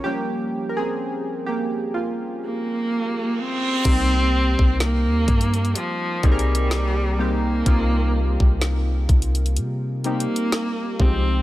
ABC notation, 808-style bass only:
X:1
M:4/4
L:1/16
Q:"Swing 16ths" 1/4=63
K:Cphr
V:1 name="808-style bass" clef=bass
z16 | C,,3 C,,2 E,, G,,2 z2 C,,6 | C,,3 C,,3 C,,2 C,3 z3 C,,2 |]